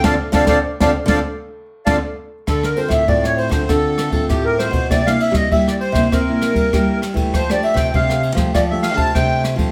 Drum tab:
RD |----------------|x-xxx-xxx-xxx-xx|x-xxx-xxx-xxx-xx|x-xxx-xxx-xxx-xx|
SD |o-oo-o-o----o---|rr-r-r-rr-r-r-r-|rr-r-r-rr-r-r-r-|rr-r-r-rr-r-r-r-|
BD |o-oo-o-o----o---|o--oo--oo--oo--o|o--oo--oo--oo--o|o--oo--oo--oo--o|